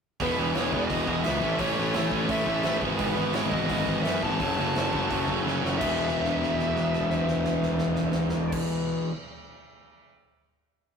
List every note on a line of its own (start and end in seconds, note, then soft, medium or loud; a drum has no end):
0.20 0.36 E1 medium
0.20 0.36 E2 medium
0.20 0.37 B2 loud
0.20 0.38 E3 medium
0.20 0.37 G#3 medium
0.20 0.38 B3 medium
0.20 0.39 E4 loud
0.20 0.54 B4 medium
0.20 kick loud
0.20 open hi-hat medium
0.37 0.53 E1 medium
0.37 0.53 E2 medium
0.37 0.53 B2 medium
0.37 0.56 E3 medium
0.37 0.55 G#3 medium
0.37 0.56 B3 medium
0.37 0.56 E4 loud
0.54 0.71 E1 medium
0.54 0.71 E2 medium
0.54 0.71 B2 loud
0.54 0.73 E3 medium
0.54 0.72 G#3 medium
0.54 0.73 B3 loud
0.54 0.74 E4 loud
0.54 0.73 C#5 medium
0.54 snare loud
0.54 open hi-hat medium
0.72 0.88 E1 medium
0.72 0.89 E2 medium
0.72 0.90 B2 medium
0.72 0.89 E3 medium
0.72 0.89 G#3 medium
0.72 0.89 B3 medium
0.72 0.90 E4 medium
0.72 1.24 D#5 medium
0.72 kick medium
0.89 1.06 E1 medium
0.89 1.06 E2 loud
0.89 1.06 B2 loud
0.89 1.05 E3 medium
0.89 1.05 G#3 loud
0.89 1.05 B3 loud
0.89 1.06 E4 loud
0.89 kick loud
0.89 open hi-hat medium
1.06 1.23 E1 medium
1.06 1.25 E2 medium
1.06 1.26 B2 medium
1.06 1.23 E3 medium
1.06 1.23 G#3 medium
1.06 1.23 B3 medium
1.06 1.25 E4 medium
1.06 kick medium
1.24 1.42 C#2 medium
1.24 1.42 E2 medium
1.24 1.42 B2 medium
1.24 1.42 E3 medium
1.24 1.41 G#3 medium
1.24 1.41 B3 medium
1.24 1.43 E4 loud
1.24 1.60 E5 loud
1.24 snare loud
1.24 open hi-hat medium
1.41 1.59 A1 medium
1.41 1.58 A2 medium
1.41 1.59 E3 loud
1.41 1.59 A3 medium
1.41 1.59 C#4 medium
1.41 1.60 E4 loud
1.41 kick medium
1.59 1.76 A1 loud
1.59 1.76 A2 medium
1.59 1.77 E3 loud
1.59 1.76 A3 medium
1.59 1.77 C#4 medium
1.59 1.78 E4 loud
1.59 1.93 C#5 medium
1.59 kick loud
1.59 open hi-hat medium
1.77 1.94 A1 medium
1.77 1.93 A2 medium
1.77 1.94 E3 medium
1.77 1.94 A3 medium
1.77 1.94 C#4 medium
1.77 1.95 E4 medium
1.94 2.11 A1 medium
1.94 2.10 A2 medium
1.94 2.12 E3 medium
1.94 2.11 A3 medium
1.94 2.11 C#4 loud
1.94 2.12 E4 loud
1.94 2.31 C#5 medium
1.94 snare loud
1.94 open hi-hat medium
2.11 2.28 A1 medium
2.11 2.27 A2 medium
2.11 2.28 E3 medium
2.11 2.28 A3 medium
2.11 2.28 C#4 medium
2.11 2.28 E4 medium
2.11 kick medium
2.28 2.46 A1 medium
2.28 2.46 A2 loud
2.28 2.46 E3 medium
2.28 2.46 A3 loud
2.28 2.47 C#4 loud
2.28 2.47 E4 loud
2.28 2.79 E5 medium
2.28 kick loud
2.28 open hi-hat medium
2.46 2.63 A1 medium
2.46 2.64 A2 medium
2.46 2.64 E3 medium
2.46 2.64 A3 medium
2.46 2.65 C#4 medium
2.46 2.66 E4 medium
2.46 kick medium
2.63 2.81 A1 medium
2.63 2.81 A2 medium
2.63 2.81 E3 medium
2.63 2.82 A3 loud
2.63 2.82 C#4 loud
2.63 2.82 E4 loud
2.63 snare loud
2.63 open hi-hat soft
2.82 2.99 G#1 medium
2.82 2.99 E2 loud
2.82 2.98 G#2 loud
2.82 3.00 B2 medium
2.82 2.98 E3 medium
2.82 2.99 G#3 loud
2.82 2.99 B3 medium
2.82 3.00 E4 loud
2.82 kick medium
2.98 3.16 G#1 medium
2.98 3.17 E2 medium
2.98 3.15 G#2 loud
2.98 3.17 B2 loud
2.98 3.16 E3 medium
2.98 3.17 G#3 loud
2.98 3.17 B3 loud
2.98 3.17 E4 loud
2.98 3.35 B4 medium
2.98 kick loud
2.98 open hi-hat medium
3.17 3.33 G#1 medium
3.17 3.33 E2 medium
3.17 3.34 G#2 medium
3.17 3.34 B2 medium
3.17 3.34 E3 medium
3.17 3.35 G#3 medium
3.17 3.35 B3 medium
3.17 3.35 E4 medium
3.33 3.51 G#1 medium
3.33 3.51 E2 medium
3.33 3.52 G#2 medium
3.33 3.52 B2 loud
3.33 3.52 E3 loud
3.33 3.53 G#3 loud
3.33 3.53 B3 loud
3.33 3.53 E4 loud
3.33 3.39 C#5 medium
3.33 snare loud
3.33 open hi-hat medium
3.50 3.68 G#1 medium
3.50 3.68 E2 medium
3.50 3.69 G#2 medium
3.50 3.69 B2 medium
3.50 3.69 E3 medium
3.50 3.70 G#3 medium
3.50 3.70 B3 medium
3.50 3.70 E4 medium
3.50 4.03 D#5 medium
3.50 kick medium
3.69 3.86 G#1 medium
3.69 3.87 E2 loud
3.69 3.86 G#2 loud
3.69 3.87 B2 medium
3.69 3.87 E3 loud
3.69 3.87 G#3 loud
3.69 3.88 B3 loud
3.69 3.87 E4 loud
3.69 kick loud
3.69 open hi-hat medium
3.87 4.04 G#1 medium
3.87 4.03 E2 medium
3.87 4.04 G#2 medium
3.87 4.04 B2 loud
3.87 4.04 E3 medium
3.87 4.05 G#3 medium
3.87 4.05 B3 medium
3.87 4.05 E4 loud
3.87 kick medium
4.03 4.23 E2 medium
4.03 4.21 F#2 medium
4.03 4.22 G#2 loud
4.03 4.23 B2 medium
4.03 4.23 E3 loud
4.03 4.22 G#3 loud
4.03 4.23 B3 loud
4.03 4.23 E4 loud
4.03 4.22 E5 loud
4.03 snare loud
4.03 open hi-hat medium
4.22 4.39 G#1 medium
4.22 4.40 E2 medium
4.22 4.39 G#2 medium
4.22 4.40 B2 medium
4.22 4.40 E3 medium
4.22 4.40 G#3 medium
4.22 4.40 B3 medium
4.22 4.40 E4 medium
4.22 5.42 A5 loud
4.22 kick medium
4.40 4.57 F#1 medium
4.40 4.57 F#2 loud
4.40 4.57 C#3 loud
4.40 4.58 F#3 medium
4.40 4.58 A3 medium
4.40 4.58 C#4 loud
4.40 kick loud
4.40 open hi-hat medium
4.58 4.75 F#1 medium
4.58 4.74 F#2 medium
4.58 4.75 C#3 medium
4.58 4.75 F#3 medium
4.58 4.75 A3 medium
4.58 4.75 C#4 medium
4.75 4.92 F#1 medium
4.75 4.91 F#2 medium
4.75 4.91 C#3 medium
4.75 4.92 F#3 medium
4.75 4.93 A3 loud
4.75 4.92 C#4 loud
4.75 snare loud
4.75 open hi-hat medium
4.92 5.10 F#1 medium
4.92 5.09 F#2 medium
4.92 5.09 C#3 medium
4.92 5.10 F#3 medium
4.92 5.10 A3 medium
4.92 5.11 C#4 medium
4.92 kick medium
5.10 5.27 F#1 medium
5.10 5.26 F#2 medium
5.10 5.27 C#3 loud
5.10 5.27 F#3 loud
5.10 5.28 A3 loud
5.10 5.28 C#4 loud
5.10 kick loud
5.10 open hi-hat medium
5.28 5.44 F#1 medium
5.28 5.44 F#2 medium
5.28 5.44 C#3 medium
5.28 5.44 F#3 medium
5.28 5.45 A3 medium
5.28 5.46 C#4 medium
5.28 kick medium
5.45 5.63 F#1 medium
5.45 5.62 F#2 medium
5.45 5.63 C#3 loud
5.45 5.63 F#3 loud
5.45 5.63 A3 medium
5.45 5.63 C#4 loud
5.45 snare medium
5.63 5.80 F#1 medium
5.63 5.80 F#2 medium
5.63 5.79 C#3 medium
5.63 5.80 F#3 medium
5.63 5.81 A3 medium
5.63 5.81 C#4 loud
5.63 snare medium
5.78 8.56 E1 medium
5.78 9.11 E2 medium
5.78 9.11 B2 medium
5.78 9.12 E3 medium
5.78 9.12 G#3 medium
5.78 8.55 E5 medium
5.78 kick loud
5.78 crash medium
5.82 9.12 B3 loud
5.82 9.12 E4 loud
5.98 floor tom soft
6.08 snare soft
6.15 floor tom soft
6.25 snare medium
6.33 floor tom medium
6.42 snare medium
6.50 floor tom medium
6.59 snare medium
6.67 floor tom medium
6.76 snare medium
6.84 floor tom medium
6.93 snare medium
7.00 floor tom medium
7.10 snare medium
7.18 floor tom medium
7.28 snare medium
7.35 floor tom medium
7.44 snare medium
7.53 floor tom medium
7.62 snare medium
7.69 floor tom medium
7.78 snare medium
7.86 floor tom medium
7.96 snare medium
8.03 floor tom medium
8.12 snare medium
8.19 floor tom medium
8.29 snare medium
8.37 floor tom medium
8.52 kick loud
8.52 crash loud